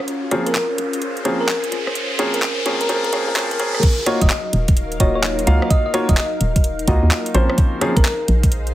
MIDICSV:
0, 0, Header, 1, 7, 480
1, 0, Start_track
1, 0, Key_signature, -6, "minor"
1, 0, Tempo, 468750
1, 82, Time_signature, 4, 2, 24, 8
1, 8950, End_track
2, 0, Start_track
2, 0, Title_t, "Synth pluck"
2, 0, Program_c, 0, 84
2, 478, Note_on_c, 0, 70, 82
2, 532, Note_off_c, 0, 70, 0
2, 564, Note_on_c, 0, 70, 73
2, 662, Note_off_c, 0, 70, 0
2, 1439, Note_on_c, 0, 70, 89
2, 1492, Note_off_c, 0, 70, 0
2, 1522, Note_on_c, 0, 70, 78
2, 1621, Note_off_c, 0, 70, 0
2, 2398, Note_on_c, 0, 70, 88
2, 2452, Note_off_c, 0, 70, 0
2, 2877, Note_on_c, 0, 70, 90
2, 2932, Note_off_c, 0, 70, 0
2, 2962, Note_on_c, 0, 70, 89
2, 3061, Note_off_c, 0, 70, 0
2, 3117, Note_on_c, 0, 70, 77
2, 3171, Note_off_c, 0, 70, 0
2, 3200, Note_on_c, 0, 70, 91
2, 3300, Note_off_c, 0, 70, 0
2, 3357, Note_on_c, 0, 70, 83
2, 3411, Note_off_c, 0, 70, 0
2, 3598, Note_on_c, 0, 70, 78
2, 3652, Note_off_c, 0, 70, 0
2, 3684, Note_on_c, 0, 70, 91
2, 3782, Note_off_c, 0, 70, 0
2, 3841, Note_on_c, 0, 70, 82
2, 3893, Note_off_c, 0, 70, 0
2, 4319, Note_on_c, 0, 75, 90
2, 4372, Note_off_c, 0, 75, 0
2, 4403, Note_on_c, 0, 75, 76
2, 4502, Note_off_c, 0, 75, 0
2, 5123, Note_on_c, 0, 73, 91
2, 5221, Note_off_c, 0, 73, 0
2, 5277, Note_on_c, 0, 73, 78
2, 5331, Note_off_c, 0, 73, 0
2, 5841, Note_on_c, 0, 75, 93
2, 5940, Note_off_c, 0, 75, 0
2, 5998, Note_on_c, 0, 75, 76
2, 6052, Note_off_c, 0, 75, 0
2, 6237, Note_on_c, 0, 75, 90
2, 6291, Note_off_c, 0, 75, 0
2, 6323, Note_on_c, 0, 75, 76
2, 6422, Note_off_c, 0, 75, 0
2, 8156, Note_on_c, 0, 70, 91
2, 8211, Note_off_c, 0, 70, 0
2, 8245, Note_on_c, 0, 70, 78
2, 8342, Note_off_c, 0, 70, 0
2, 8950, End_track
3, 0, Start_track
3, 0, Title_t, "String machine"
3, 0, Program_c, 1, 50
3, 0, Note_on_c, 1, 61, 85
3, 0, Note_on_c, 1, 65, 74
3, 81, Note_on_c, 1, 68, 75
3, 82, Note_on_c, 1, 72, 97
3, 3880, Note_off_c, 1, 61, 0
3, 3880, Note_off_c, 1, 65, 0
3, 3883, Note_off_c, 1, 68, 0
3, 3884, Note_off_c, 1, 72, 0
3, 3918, Note_on_c, 1, 63, 83
3, 3918, Note_on_c, 1, 70, 92
3, 3918, Note_on_c, 1, 77, 78
3, 3919, Note_on_c, 1, 54, 80
3, 7721, Note_off_c, 1, 70, 0
3, 7722, Note_off_c, 1, 54, 0
3, 7722, Note_off_c, 1, 77, 0
3, 7758, Note_on_c, 1, 68, 76
3, 7759, Note_on_c, 1, 72, 93
3, 7759, Note_on_c, 1, 77, 80
3, 8950, Note_off_c, 1, 63, 0
3, 8950, Note_off_c, 1, 68, 0
3, 8950, Note_off_c, 1, 72, 0
3, 8950, Note_off_c, 1, 77, 0
3, 8950, End_track
4, 0, Start_track
4, 0, Title_t, "Grand piano"
4, 0, Program_c, 2, 0
4, 321, Note_on_c, 2, 58, 82
4, 321, Note_on_c, 2, 60, 79
4, 321, Note_on_c, 2, 61, 75
4, 322, Note_on_c, 2, 53, 88
4, 322, Note_on_c, 2, 68, 92
4, 530, Note_off_c, 2, 53, 0
4, 530, Note_off_c, 2, 58, 0
4, 530, Note_off_c, 2, 60, 0
4, 530, Note_off_c, 2, 61, 0
4, 530, Note_off_c, 2, 68, 0
4, 1280, Note_on_c, 2, 58, 81
4, 1280, Note_on_c, 2, 60, 81
4, 1281, Note_on_c, 2, 53, 88
4, 1281, Note_on_c, 2, 61, 77
4, 1281, Note_on_c, 2, 68, 92
4, 1489, Note_off_c, 2, 58, 0
4, 1489, Note_off_c, 2, 60, 0
4, 1490, Note_off_c, 2, 53, 0
4, 1490, Note_off_c, 2, 61, 0
4, 1490, Note_off_c, 2, 68, 0
4, 2242, Note_on_c, 2, 58, 85
4, 2242, Note_on_c, 2, 68, 103
4, 2243, Note_on_c, 2, 53, 88
4, 2243, Note_on_c, 2, 60, 82
4, 2243, Note_on_c, 2, 61, 85
4, 2450, Note_off_c, 2, 58, 0
4, 2451, Note_off_c, 2, 53, 0
4, 2451, Note_off_c, 2, 60, 0
4, 2451, Note_off_c, 2, 61, 0
4, 2451, Note_off_c, 2, 68, 0
4, 2722, Note_on_c, 2, 53, 90
4, 2722, Note_on_c, 2, 58, 79
4, 2722, Note_on_c, 2, 60, 82
4, 2722, Note_on_c, 2, 68, 98
4, 2723, Note_on_c, 2, 61, 82
4, 2930, Note_off_c, 2, 53, 0
4, 2930, Note_off_c, 2, 58, 0
4, 2930, Note_off_c, 2, 60, 0
4, 2930, Note_off_c, 2, 68, 0
4, 2931, Note_off_c, 2, 61, 0
4, 2961, Note_on_c, 2, 53, 98
4, 2962, Note_on_c, 2, 58, 87
4, 2962, Note_on_c, 2, 60, 89
4, 2962, Note_on_c, 2, 61, 88
4, 2962, Note_on_c, 2, 68, 108
4, 3170, Note_off_c, 2, 53, 0
4, 3170, Note_off_c, 2, 58, 0
4, 3170, Note_off_c, 2, 60, 0
4, 3170, Note_off_c, 2, 68, 0
4, 3171, Note_off_c, 2, 61, 0
4, 3203, Note_on_c, 2, 53, 95
4, 3203, Note_on_c, 2, 58, 88
4, 3203, Note_on_c, 2, 60, 85
4, 3203, Note_on_c, 2, 61, 86
4, 3203, Note_on_c, 2, 68, 102
4, 3411, Note_off_c, 2, 53, 0
4, 3411, Note_off_c, 2, 58, 0
4, 3411, Note_off_c, 2, 60, 0
4, 3411, Note_off_c, 2, 61, 0
4, 3411, Note_off_c, 2, 68, 0
4, 3442, Note_on_c, 2, 58, 93
4, 3442, Note_on_c, 2, 60, 86
4, 3443, Note_on_c, 2, 53, 101
4, 3443, Note_on_c, 2, 61, 90
4, 3443, Note_on_c, 2, 68, 111
4, 3650, Note_off_c, 2, 58, 0
4, 3650, Note_off_c, 2, 60, 0
4, 3651, Note_off_c, 2, 53, 0
4, 3651, Note_off_c, 2, 61, 0
4, 3651, Note_off_c, 2, 68, 0
4, 3681, Note_on_c, 2, 60, 90
4, 3681, Note_on_c, 2, 61, 91
4, 3681, Note_on_c, 2, 68, 111
4, 3682, Note_on_c, 2, 53, 98
4, 3682, Note_on_c, 2, 58, 91
4, 3890, Note_off_c, 2, 53, 0
4, 3890, Note_off_c, 2, 58, 0
4, 3890, Note_off_c, 2, 60, 0
4, 3890, Note_off_c, 2, 61, 0
4, 3890, Note_off_c, 2, 68, 0
4, 4162, Note_on_c, 2, 58, 92
4, 4162, Note_on_c, 2, 63, 85
4, 4162, Note_on_c, 2, 65, 86
4, 4162, Note_on_c, 2, 66, 85
4, 4162, Note_on_c, 2, 73, 103
4, 4370, Note_off_c, 2, 58, 0
4, 4370, Note_off_c, 2, 63, 0
4, 4370, Note_off_c, 2, 65, 0
4, 4370, Note_off_c, 2, 66, 0
4, 4370, Note_off_c, 2, 73, 0
4, 5121, Note_on_c, 2, 65, 72
4, 5122, Note_on_c, 2, 58, 74
4, 5122, Note_on_c, 2, 63, 68
4, 5122, Note_on_c, 2, 66, 72
4, 5122, Note_on_c, 2, 75, 87
4, 5581, Note_off_c, 2, 65, 0
4, 5581, Note_off_c, 2, 75, 0
4, 5582, Note_off_c, 2, 58, 0
4, 5582, Note_off_c, 2, 63, 0
4, 5582, Note_off_c, 2, 66, 0
4, 5601, Note_on_c, 2, 58, 87
4, 5601, Note_on_c, 2, 66, 82
4, 5602, Note_on_c, 2, 63, 81
4, 5602, Note_on_c, 2, 65, 80
4, 5602, Note_on_c, 2, 77, 96
4, 6061, Note_off_c, 2, 58, 0
4, 6061, Note_off_c, 2, 63, 0
4, 6061, Note_off_c, 2, 66, 0
4, 6061, Note_off_c, 2, 77, 0
4, 6062, Note_off_c, 2, 65, 0
4, 6080, Note_on_c, 2, 73, 104
4, 6081, Note_on_c, 2, 58, 95
4, 6081, Note_on_c, 2, 63, 85
4, 6081, Note_on_c, 2, 65, 84
4, 6081, Note_on_c, 2, 66, 85
4, 6289, Note_off_c, 2, 73, 0
4, 6290, Note_off_c, 2, 58, 0
4, 6290, Note_off_c, 2, 63, 0
4, 6290, Note_off_c, 2, 65, 0
4, 6290, Note_off_c, 2, 66, 0
4, 7042, Note_on_c, 2, 58, 76
4, 7042, Note_on_c, 2, 65, 68
4, 7042, Note_on_c, 2, 66, 70
4, 7042, Note_on_c, 2, 75, 85
4, 7043, Note_on_c, 2, 63, 70
4, 7502, Note_off_c, 2, 58, 0
4, 7502, Note_off_c, 2, 63, 0
4, 7502, Note_off_c, 2, 65, 0
4, 7502, Note_off_c, 2, 66, 0
4, 7502, Note_off_c, 2, 75, 0
4, 7521, Note_on_c, 2, 53, 85
4, 7521, Note_on_c, 2, 58, 80
4, 7521, Note_on_c, 2, 60, 80
4, 7521, Note_on_c, 2, 61, 81
4, 7521, Note_on_c, 2, 72, 96
4, 7981, Note_off_c, 2, 53, 0
4, 7981, Note_off_c, 2, 58, 0
4, 7981, Note_off_c, 2, 60, 0
4, 7981, Note_off_c, 2, 61, 0
4, 7981, Note_off_c, 2, 72, 0
4, 8000, Note_on_c, 2, 58, 87
4, 8000, Note_on_c, 2, 61, 86
4, 8000, Note_on_c, 2, 68, 107
4, 8001, Note_on_c, 2, 53, 95
4, 8001, Note_on_c, 2, 60, 85
4, 8209, Note_off_c, 2, 58, 0
4, 8209, Note_off_c, 2, 61, 0
4, 8210, Note_off_c, 2, 53, 0
4, 8210, Note_off_c, 2, 60, 0
4, 8210, Note_off_c, 2, 68, 0
4, 8950, End_track
5, 0, Start_track
5, 0, Title_t, "FM bass"
5, 0, Program_c, 3, 39
5, 0, Note_on_c, 3, 34, 103
5, 444, Note_off_c, 3, 34, 0
5, 475, Note_on_c, 3, 34, 99
5, 550, Note_off_c, 3, 34, 0
5, 801, Note_on_c, 3, 34, 90
5, 1264, Note_off_c, 3, 34, 0
5, 1281, Note_on_c, 3, 34, 81
5, 1744, Note_off_c, 3, 34, 0
5, 1760, Note_on_c, 3, 32, 94
5, 1896, Note_off_c, 3, 32, 0
5, 2395, Note_on_c, 3, 34, 103
5, 2470, Note_off_c, 3, 34, 0
5, 2722, Note_on_c, 3, 34, 92
5, 3184, Note_off_c, 3, 34, 0
5, 3202, Note_on_c, 3, 32, 97
5, 3337, Note_off_c, 3, 32, 0
5, 3356, Note_on_c, 3, 46, 100
5, 3431, Note_off_c, 3, 46, 0
5, 3681, Note_on_c, 3, 41, 91
5, 3816, Note_off_c, 3, 41, 0
5, 4317, Note_on_c, 3, 27, 106
5, 4391, Note_off_c, 3, 27, 0
5, 4642, Note_on_c, 3, 27, 92
5, 5104, Note_off_c, 3, 27, 0
5, 5122, Note_on_c, 3, 27, 86
5, 5584, Note_off_c, 3, 27, 0
5, 5602, Note_on_c, 3, 37, 90
5, 5737, Note_off_c, 3, 37, 0
5, 6236, Note_on_c, 3, 27, 101
5, 6311, Note_off_c, 3, 27, 0
5, 6560, Note_on_c, 3, 27, 88
5, 7023, Note_off_c, 3, 27, 0
5, 7041, Note_on_c, 3, 37, 96
5, 7176, Note_off_c, 3, 37, 0
5, 7196, Note_on_c, 3, 39, 96
5, 7271, Note_off_c, 3, 39, 0
5, 7521, Note_on_c, 3, 34, 87
5, 7656, Note_off_c, 3, 34, 0
5, 8156, Note_on_c, 3, 34, 101
5, 8231, Note_off_c, 3, 34, 0
5, 8481, Note_on_c, 3, 34, 95
5, 8944, Note_off_c, 3, 34, 0
5, 8950, End_track
6, 0, Start_track
6, 0, Title_t, "Riser"
6, 0, Program_c, 4, 103
6, 0, Note_on_c, 4, 60, 74
6, 3922, Note_off_c, 4, 60, 0
6, 8950, End_track
7, 0, Start_track
7, 0, Title_t, "Drums"
7, 80, Note_on_c, 9, 42, 61
7, 182, Note_off_c, 9, 42, 0
7, 321, Note_on_c, 9, 37, 58
7, 321, Note_on_c, 9, 42, 99
7, 423, Note_off_c, 9, 37, 0
7, 423, Note_off_c, 9, 42, 0
7, 476, Note_on_c, 9, 42, 66
7, 561, Note_on_c, 9, 39, 123
7, 578, Note_off_c, 9, 42, 0
7, 663, Note_off_c, 9, 39, 0
7, 801, Note_on_c, 9, 42, 95
7, 904, Note_off_c, 9, 42, 0
7, 956, Note_on_c, 9, 42, 60
7, 1040, Note_off_c, 9, 42, 0
7, 1040, Note_on_c, 9, 42, 59
7, 1143, Note_off_c, 9, 42, 0
7, 1195, Note_on_c, 9, 42, 36
7, 1281, Note_off_c, 9, 42, 0
7, 1281, Note_on_c, 9, 42, 99
7, 1383, Note_off_c, 9, 42, 0
7, 1521, Note_on_c, 9, 39, 120
7, 1623, Note_off_c, 9, 39, 0
7, 1676, Note_on_c, 9, 42, 50
7, 1761, Note_off_c, 9, 42, 0
7, 1761, Note_on_c, 9, 42, 94
7, 1863, Note_off_c, 9, 42, 0
7, 1917, Note_on_c, 9, 37, 68
7, 2001, Note_on_c, 9, 42, 65
7, 2019, Note_off_c, 9, 37, 0
7, 2103, Note_off_c, 9, 42, 0
7, 2241, Note_on_c, 9, 37, 57
7, 2241, Note_on_c, 9, 42, 100
7, 2343, Note_off_c, 9, 37, 0
7, 2343, Note_off_c, 9, 42, 0
7, 2395, Note_on_c, 9, 42, 65
7, 2479, Note_on_c, 9, 39, 121
7, 2498, Note_off_c, 9, 42, 0
7, 2582, Note_off_c, 9, 39, 0
7, 2720, Note_on_c, 9, 42, 93
7, 2823, Note_off_c, 9, 42, 0
7, 2874, Note_on_c, 9, 42, 68
7, 2961, Note_off_c, 9, 42, 0
7, 2961, Note_on_c, 9, 42, 63
7, 3063, Note_off_c, 9, 42, 0
7, 3116, Note_on_c, 9, 42, 37
7, 3202, Note_off_c, 9, 42, 0
7, 3202, Note_on_c, 9, 42, 104
7, 3304, Note_off_c, 9, 42, 0
7, 3440, Note_on_c, 9, 39, 121
7, 3543, Note_off_c, 9, 39, 0
7, 3596, Note_on_c, 9, 42, 50
7, 3681, Note_off_c, 9, 42, 0
7, 3681, Note_on_c, 9, 42, 90
7, 3783, Note_off_c, 9, 42, 0
7, 3834, Note_on_c, 9, 37, 68
7, 3921, Note_on_c, 9, 42, 66
7, 3921, Note_on_c, 9, 49, 109
7, 3923, Note_on_c, 9, 36, 118
7, 3937, Note_off_c, 9, 37, 0
7, 4023, Note_off_c, 9, 42, 0
7, 4023, Note_off_c, 9, 49, 0
7, 4025, Note_off_c, 9, 36, 0
7, 4161, Note_on_c, 9, 37, 60
7, 4161, Note_on_c, 9, 42, 115
7, 4264, Note_off_c, 9, 37, 0
7, 4264, Note_off_c, 9, 42, 0
7, 4316, Note_on_c, 9, 42, 71
7, 4317, Note_on_c, 9, 36, 102
7, 4400, Note_on_c, 9, 39, 121
7, 4418, Note_off_c, 9, 42, 0
7, 4419, Note_off_c, 9, 36, 0
7, 4502, Note_off_c, 9, 39, 0
7, 4639, Note_on_c, 9, 42, 101
7, 4741, Note_off_c, 9, 42, 0
7, 4794, Note_on_c, 9, 42, 67
7, 4797, Note_on_c, 9, 36, 111
7, 4881, Note_off_c, 9, 42, 0
7, 4881, Note_on_c, 9, 42, 63
7, 4899, Note_off_c, 9, 36, 0
7, 4983, Note_off_c, 9, 42, 0
7, 5035, Note_on_c, 9, 42, 38
7, 5120, Note_off_c, 9, 42, 0
7, 5120, Note_on_c, 9, 42, 110
7, 5121, Note_on_c, 9, 36, 62
7, 5222, Note_off_c, 9, 42, 0
7, 5224, Note_off_c, 9, 36, 0
7, 5360, Note_on_c, 9, 39, 115
7, 5462, Note_off_c, 9, 39, 0
7, 5517, Note_on_c, 9, 42, 52
7, 5601, Note_off_c, 9, 42, 0
7, 5601, Note_on_c, 9, 42, 99
7, 5704, Note_off_c, 9, 42, 0
7, 5757, Note_on_c, 9, 37, 73
7, 5842, Note_on_c, 9, 36, 124
7, 5842, Note_on_c, 9, 42, 66
7, 5859, Note_off_c, 9, 37, 0
7, 5944, Note_off_c, 9, 36, 0
7, 5944, Note_off_c, 9, 42, 0
7, 6080, Note_on_c, 9, 37, 61
7, 6080, Note_on_c, 9, 42, 111
7, 6183, Note_off_c, 9, 37, 0
7, 6183, Note_off_c, 9, 42, 0
7, 6235, Note_on_c, 9, 42, 67
7, 6236, Note_on_c, 9, 36, 113
7, 6319, Note_on_c, 9, 39, 123
7, 6337, Note_off_c, 9, 42, 0
7, 6339, Note_off_c, 9, 36, 0
7, 6421, Note_off_c, 9, 39, 0
7, 6560, Note_on_c, 9, 42, 99
7, 6662, Note_off_c, 9, 42, 0
7, 6716, Note_on_c, 9, 36, 108
7, 6716, Note_on_c, 9, 42, 64
7, 6799, Note_off_c, 9, 42, 0
7, 6799, Note_on_c, 9, 42, 62
7, 6819, Note_off_c, 9, 36, 0
7, 6902, Note_off_c, 9, 42, 0
7, 6956, Note_on_c, 9, 42, 37
7, 7040, Note_off_c, 9, 42, 0
7, 7040, Note_on_c, 9, 42, 107
7, 7042, Note_on_c, 9, 36, 66
7, 7142, Note_off_c, 9, 42, 0
7, 7144, Note_off_c, 9, 36, 0
7, 7280, Note_on_c, 9, 39, 124
7, 7382, Note_off_c, 9, 39, 0
7, 7435, Note_on_c, 9, 42, 50
7, 7521, Note_off_c, 9, 42, 0
7, 7521, Note_on_c, 9, 42, 95
7, 7623, Note_off_c, 9, 42, 0
7, 7675, Note_on_c, 9, 37, 70
7, 7760, Note_on_c, 9, 42, 65
7, 7762, Note_on_c, 9, 36, 118
7, 7777, Note_off_c, 9, 37, 0
7, 7862, Note_off_c, 9, 42, 0
7, 7864, Note_off_c, 9, 36, 0
7, 8002, Note_on_c, 9, 37, 60
7, 8002, Note_on_c, 9, 42, 102
7, 8104, Note_off_c, 9, 37, 0
7, 8104, Note_off_c, 9, 42, 0
7, 8157, Note_on_c, 9, 36, 113
7, 8157, Note_on_c, 9, 42, 63
7, 8241, Note_on_c, 9, 39, 124
7, 8259, Note_off_c, 9, 36, 0
7, 8259, Note_off_c, 9, 42, 0
7, 8344, Note_off_c, 9, 39, 0
7, 8481, Note_on_c, 9, 42, 96
7, 8583, Note_off_c, 9, 42, 0
7, 8637, Note_on_c, 9, 36, 115
7, 8637, Note_on_c, 9, 42, 66
7, 8721, Note_off_c, 9, 42, 0
7, 8721, Note_on_c, 9, 42, 60
7, 8739, Note_off_c, 9, 36, 0
7, 8823, Note_off_c, 9, 42, 0
7, 8876, Note_on_c, 9, 42, 35
7, 8950, Note_off_c, 9, 42, 0
7, 8950, End_track
0, 0, End_of_file